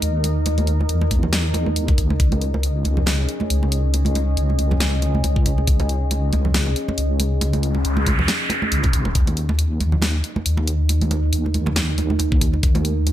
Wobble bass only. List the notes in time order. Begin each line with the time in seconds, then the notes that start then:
0.02 D#2
0.89 E2
1.80 D#2
2.06 D2
2.20 C#2
2.85 C#2
3.50 C#2
4.37 C#2
5.24 C#2
5.68 C#2
6.33 C#2
6.98 C#2
7.85 C#2
8.72 C#2
9.15 D#2
9.81 D#2
10.46 D#2
11.33 D#2
12.20 D#2